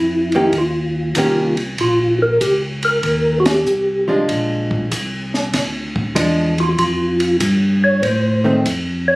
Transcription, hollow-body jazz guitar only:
0.35 0.52 D#3 medium
0.35 0.52 A#3 medium
0.35 0.53 C#4 medium
0.35 0.53 G4 medium
1.17 1.54 D#3 soft
1.17 1.55 A#3 medium
1.17 1.54 C#4 medium
1.17 1.55 G4 medium
4.08 4.86 F3 medium
4.08 4.87 G#3 medium
4.08 4.87 D4 medium
6.15 6.53 F3 soft
6.15 6.53 G#3 soft
6.15 6.53 D4 soft
8.44 8.63 D#3 medium
8.44 8.63 A3 medium
8.44 8.64 C4 medium

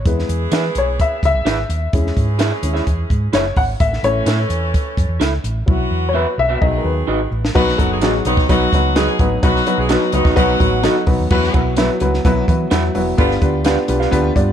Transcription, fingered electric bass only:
0.05 0.22 E2 loud
0.29 0.46 E2 medium
0.52 0.69 E3 loud
0.75 1.01 B1 medium
1.23 1.31 C#2 medium
1.34 1.43 B1 loud
1.45 1.62 G#1 loud
1.69 1.86 D#2 medium
1.93 2.10 E2 loud
2.17 2.50 G#2 medium
2.63 2.80 D#2 medium
2.87 3.04 E2 medium
3.10 3.27 G#2 medium
3.33 3.50 F#1 medium
3.56 3.73 G#1 medium
3.80 3.97 A1 loud
4.03 4.20 A1 medium
4.26 4.43 A2 loud
4.49 4.75 E2 medium
4.97 5.06 F#2 medium
5.09 5.17 E2 loud
5.20 5.37 C#2 medium
5.44 5.61 A1 loud
5.68 5.85 B1 loud
5.91 6.25 E2 medium
6.38 6.55 B1 loud
6.62 6.79 B1 loud
6.84 7.01 D#2 medium
7.08 7.25 G#1 medium
7.31 7.48 A1 medium
7.55 7.72 B1 loud
7.79 8.02 F#1 medium
8.02 8.19 A1 medium
8.25 8.42 B1 loud
8.49 8.66 B1 loud
8.72 9.06 C#2 loud
9.19 9.36 A1 loud
9.43 9.60 B1 loud
9.78 9.95 B1 medium
10.13 10.22 C#2 medium
10.25 10.33 B1 loud
10.37 10.54 B1 loud
10.60 10.86 A1 medium
11.07 11.15 B1 medium
11.19 11.27 D#2 medium
11.31 11.48 E2 loud
11.54 11.88 B1 medium
12.01 12.18 C#2 medium
12.25 12.42 B1 loud
12.48 12.65 E3 loud
12.71 12.88 E2 loud
12.95 13.12 E1 medium
13.18 13.35 G1 loud
13.42 13.76 D2 medium
13.89 14.05 B1 loud
14.12 14.29 D2 medium
14.36 14.53 G2 loud

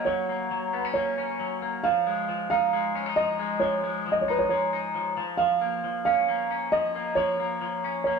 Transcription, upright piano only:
0.05 0.92 C#5 medium
0.94 1.57 C#5 medium
1.84 2.48 F5 medium
2.50 2.92 F5 medium
3.16 3.62 D#5 medium
3.60 4.09 C#5 medium
4.12 4.22 D#5 medium
4.21 4.31 C#5 medium
4.30 4.40 B4 medium
4.39 4.48 C#5 medium
4.49 5.12 C#5 medium
5.37 6.04 F5 medium
6.05 6.47 F5 medium
6.72 7.14 D#5 loud
7.15 8.03 C#5 medium
8.04 8.19 C#5 medium

